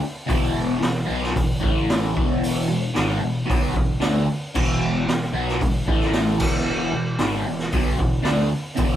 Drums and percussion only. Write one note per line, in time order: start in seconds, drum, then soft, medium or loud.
0.29 kick loud
0.29 open hi-hat medium
0.83 snare loud
0.83 open hi-hat medium
1.23 snare soft
1.36 kick loud
1.36 open hi-hat medium
1.63 kick medium
1.90 snare loud
1.90 open hi-hat medium
2.17 kick loud
2.44 open hi-hat medium
2.96 snare loud
2.96 open hi-hat medium
3.50 kick loud
3.50 open hi-hat medium
3.76 kick medium
4.02 snare loud
4.02 open hi-hat medium
4.55 kick loud
4.55 crash loud
5.09 snare loud
5.09 open hi-hat medium
5.48 snare soft
5.61 kick loud
5.61 open hi-hat medium
5.88 kick medium
6.00 snare soft
6.13 snare loud
6.13 open hi-hat medium
6.40 kick loud
6.40 crash loud
7.19 snare loud
7.19 open hi-hat medium
7.59 snare soft
7.72 kick loud
7.72 open hi-hat medium
7.99 kick medium
8.25 snare loud
8.25 open hi-hat medium
8.77 kick loud
8.77 open hi-hat medium